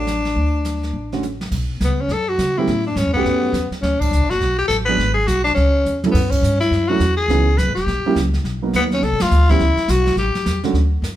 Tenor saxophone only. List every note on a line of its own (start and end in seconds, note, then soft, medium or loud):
0.00 1.26 D4 medium
1.84 2.02 B3 medium
2.01 2.14 C#4 medium
2.13 2.30 A4 medium
2.29 2.59 F#4 medium
2.58 2.86 E4 medium
2.86 2.99 D4 medium
2.98 3.13 C#4 medium
3.13 3.68 B3 medium
3.82 4.02 C#4 medium
4.01 4.31 D4 loud
4.30 4.58 F#4 loud
4.58 4.67 G4 loud
4.68 4.77 A4 medium
4.85 5.13 B4 loud
5.14 5.29 G#4 medium
5.27 5.44 F#4 loud
5.44 5.49 D4 medium
5.54 5.99 C#4 medium
6.11 6.32 B3 medium
6.31 6.60 C#4 medium
6.60 6.90 E4 medium
6.88 7.16 F#4 medium
7.17 7.59 G#4 medium
7.57 7.74 B4 medium
7.75 8.29 G4 medium
8.76 8.83 B3 medium
8.93 9.05 C#4 medium
9.04 9.23 A4 loud
9.22 9.52 F4 loud
9.50 9.92 E4 medium
9.90 10.18 F#4 loud
10.18 10.61 G4 medium